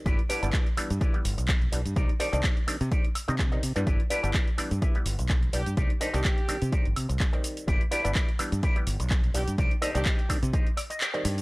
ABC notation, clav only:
X:1
M:4/4
L:1/16
Q:"Swing 16ths" 1/4=126
K:G
V:1 name="Clav" clef=bass
z2 [E,G,B,D] [E,G,B,D] z2 [E,G,B,D] z2 [E,G,B,G]4- [E,G,B,G] [E,G,B,D] z | z2 [_E,G,CD] [E,G,CD] z2 [E,G,CD] z4 [E,G,C_E] z [E,G,CE] z [=E,G,B,D]- | [E,G,B,D]2 [E,G,B,D] [E,G,B,D] z2 [E,G,B,D] z2 [E,G,B,G]4- [E,G,B,G] [E,G,B,D] z | z2 [_E,G,CD] [E,G,CD] z2 [E,G,CD] z6 [E,G,Cd]3 |
z2 [E,G,B,D] [E,G,B,D] z2 [E,G,B,D] z2 [E,G,B,G]4- [E,G,B,G] [E,G,B,D] z | z2 [_E,G,CD] [E,G,CD] z2 [E,G,CD] z6 [E,G,C]3 |]